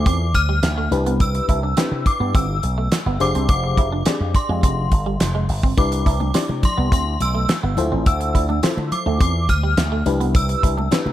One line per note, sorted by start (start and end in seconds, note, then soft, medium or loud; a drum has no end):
0.00 0.27 E4 medium
0.00 0.27 F4 medium
0.00 0.27 A4 medium
0.00 0.28 C5 medium
0.06 0.35 E2 loud
0.06 0.17 C4 medium
0.06 0.36 D6 loud
0.06 kick loud
0.06 closed hi-hat loud
0.34 0.59 D2 medium
0.34 0.88 F6 loud
0.34 muted clean electric guitar stroke medium
0.34 kick medium
0.34 closed hi-hat medium
0.49 0.60 G3 medium
0.63 0.87 D2 loud
0.63 snare loud
0.63 clap medium
0.63 closed hi-hat loud
0.78 0.89 A3 medium
0.91 1.40 C2 loud
0.91 1.60 D4 medium
0.91 1.60 E4 medium
0.91 1.60 G4 medium
0.91 1.61 B4 loud
0.91 muted clean electric guitar stroke soft
0.91 closed hi-hat medium
1.06 1.17 B3 medium
1.06 closed hi-hat soft
1.20 2.09 E6 loud
1.20 kick loud
1.20 closed hi-hat medium
1.34 muted clean electric guitar stroke soft
1.34 closed hi-hat medium
1.49 1.73 C2 loud
1.49 1.60 E4 medium
1.49 kick medium
1.49 closed hi-hat medium
1.63 1.74 D4 medium
1.77 1.89 C4 medium
1.77 2.56 D4 medium
1.77 2.56 E4 medium
1.77 2.56 G4 medium
1.77 2.56 B4 medium
1.77 snare loud
1.77 clap medium
1.77 closed hi-hat loud
1.92 2.04 C3 loud
1.92 muted clean electric guitar stroke soft
2.06 2.36 D6 medium
2.06 kick medium
2.06 closed hi-hat medium
2.20 2.32 G2 medium
2.20 2.32 B3 medium
2.34 2.59 G1 loud
2.34 2.46 C4 medium
2.34 3.23 E6 loud
2.34 kick loud
2.34 closed hi-hat loud
2.63 2.87 B1 medium
2.63 muted clean electric guitar stroke medium
2.63 closed hi-hat medium
2.78 2.89 A3 medium
2.92 snare loud
2.92 clap medium
2.92 closed hi-hat loud
3.06 3.18 G1 medium
3.06 3.17 B3 medium
3.20 3.32 F1 loud
3.20 3.89 D4 medium
3.20 3.89 G4 medium
3.20 3.89 G#4 medium
3.20 3.89 C5 loud
3.20 3.47 D6 medium
3.20 muted clean electric guitar stroke soft
3.20 closed hi-hat medium
3.35 3.47 C2 loud
3.35 3.46 C4 medium
3.35 closed hi-hat medium
3.49 3.73 F1 loud
3.49 4.38 D6 loud
3.49 kick loud
3.49 closed hi-hat medium
3.64 muted clean electric guitar stroke soft
3.77 4.02 F1 loud
3.77 3.89 E4 medium
3.77 kick medium
3.77 closed hi-hat medium
3.92 4.03 D4 medium
4.06 4.18 C4 medium
4.06 4.85 D4 medium
4.06 4.85 G4 medium
4.06 4.85 G#4 medium
4.06 4.85 D5 medium
4.06 snare loud
4.06 clap medium
4.06 closed hi-hat loud
4.20 4.33 F2 medium
4.20 muted clean electric guitar stroke soft
4.35 4.48 C6 medium
4.35 kick medium
4.35 closed hi-hat medium
4.49 4.61 F2 medium
4.49 4.60 G#3 medium
4.63 4.87 F1 loud
4.63 4.74 C4 medium
4.63 5.45 C6 medium
4.63 kick loud
4.63 closed hi-hat loud
4.92 5.16 G1 medium
4.92 muted clean electric guitar stroke medium
4.92 kick medium
4.92 closed hi-hat medium
5.06 5.17 G3 medium
5.20 5.44 F1 medium
5.20 snare loud
5.20 clap medium
5.20 closed hi-hat loud
5.35 5.46 G#3 medium
5.49 5.73 G1 medium
5.49 muted clean electric guitar stroke soft
5.49 open hi-hat medium
5.63 5.75 C4 medium
5.63 kick medium
5.77 6.02 C2 loud
5.77 6.17 D4 medium
5.77 6.17 E4 medium
5.77 6.17 G4 medium
5.77 6.17 B4 loud
5.77 6.66 D6 medium
5.77 kick loud
5.77 closed hi-hat medium
5.92 muted clean electric guitar stroke soft
5.92 closed hi-hat medium
6.06 6.30 C2 loud
6.06 6.17 E4 medium
6.06 kick medium
6.06 closed hi-hat medium
6.06 muted conga soft
6.20 6.31 D4 medium
6.20 high conga medium
6.34 6.46 C4 medium
6.34 7.13 D4 medium
6.34 7.13 E4 medium
6.34 7.13 G4 medium
6.34 7.14 D5 medium
6.34 snare loud
6.34 clap medium
6.34 closed hi-hat loud
6.34 muted conga soft
6.49 6.61 C3 loud
6.49 muted clean electric guitar stroke soft
6.49 high conga medium
6.63 6.92 C6 medium
6.63 kick medium
6.63 closed hi-hat medium
6.63 muted conga soft
6.63 low conga medium
6.78 6.90 C2 medium
6.78 6.89 B3 medium
6.92 7.16 D2 loud
6.92 7.03 C4 medium
6.92 7.22 C6 loud
6.92 kick loud
6.92 closed hi-hat loud
7.20 7.45 B1 medium
7.20 7.74 E6 loud
7.20 muted clean electric guitar stroke medium
7.20 closed hi-hat medium
7.20 muted conga soft
7.20 high conga medium
7.35 7.46 A3 medium
7.49 snare loud
7.49 clap loud
7.49 closed hi-hat medium
7.49 muted conga soft
7.49 high conga medium
7.63 7.75 G1 medium
7.63 7.74 B3 medium
7.77 7.90 D2 loud
7.77 8.46 E4 medium
7.77 8.46 F4 medium
7.77 8.46 A4 medium
7.77 8.46 C5 medium
7.77 muted clean electric guitar stroke soft
7.77 closed hi-hat medium
7.77 muted conga soft
7.77 high conga medium
7.77 low conga medium
7.92 8.04 A1 medium
7.92 8.03 C4 medium
8.06 8.30 D2 loud
8.06 8.95 E6 loud
8.06 kick loud
8.06 closed hi-hat medium
8.06 muted conga soft
8.20 muted clean electric guitar stroke soft
8.20 closed hi-hat medium
8.35 8.59 D2 loud
8.35 8.46 E4 medium
8.35 kick medium
8.35 closed hi-hat medium
8.49 8.60 D4 medium
8.49 high conga medium
8.63 8.74 C4 medium
8.63 9.42 E4 medium
8.63 9.42 F4 medium
8.63 9.42 A4 medium
8.63 9.42 C5 medium
8.63 snare loud
8.63 clap medium
8.63 closed hi-hat loud
8.63 muted conga soft
8.77 8.89 D3 loud
8.77 muted clean electric guitar stroke soft
8.77 high conga medium
8.92 9.20 D6 medium
8.92 closed hi-hat medium
8.92 low conga medium
9.06 9.18 D2 loud
9.06 9.17 A3 medium
9.21 9.49 E2 loud
9.21 9.32 C4 medium
9.21 9.47 D6 loud
9.21 kick loud
9.21 closed hi-hat loud
9.49 9.73 D2 loud
9.49 10.02 F6 loud
9.49 muted clean electric guitar stroke soft
9.49 kick medium
9.49 closed hi-hat medium
9.49 muted conga soft
9.49 high conga medium
9.63 9.74 G3 medium
9.77 10.01 D2 medium
9.77 snare loud
9.77 clap medium
9.77 closed hi-hat medium
9.77 high conga medium
9.92 10.03 A3 medium
10.06 10.54 C2 loud
10.06 10.75 D4 medium
10.06 10.75 E4 medium
10.06 10.75 G4 medium
10.06 10.75 B4 medium
10.06 muted clean electric guitar stroke soft
10.06 closed hi-hat medium
10.06 high conga medium
10.06 low conga medium
10.20 10.32 B3 medium
10.20 closed hi-hat soft
10.35 11.13 E6 loud
10.35 kick loud
10.35 closed hi-hat medium
10.35 muted conga soft
10.49 muted clean electric guitar stroke soft
10.49 closed hi-hat medium
10.63 10.87 C2 loud
10.63 10.74 E4 medium
10.63 kick medium
10.63 closed hi-hat medium
10.78 10.89 D4 medium
10.78 high conga medium
10.91 11.03 C4 medium
10.91 11.13 D4 medium
10.91 11.13 E4 medium
10.91 11.13 G4 medium
10.91 11.13 B4 medium
10.91 snare loud
10.91 clap medium
10.91 closed hi-hat loud
10.91 muted conga soft
11.06 11.13 C3 loud
11.06 muted clean electric guitar stroke soft
11.06 high conga medium